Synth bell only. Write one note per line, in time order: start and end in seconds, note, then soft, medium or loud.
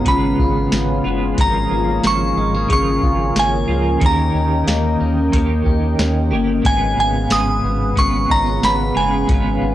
0.08 1.02 B5 medium
1.41 2.07 A#5 loud
2.07 2.72 C#6 loud
2.73 3.39 C#6 medium
3.39 4.05 G#5 medium
4.06 5.98 A#5 medium
6.66 6.99 G#5 loud
7.00 7.33 G#5 medium
7.32 8.00 D#6 loud
7.99 8.32 C#6 medium
8.31 8.65 A#5 loud
8.65 8.95 B5 loud
8.97 9.75 G#5 medium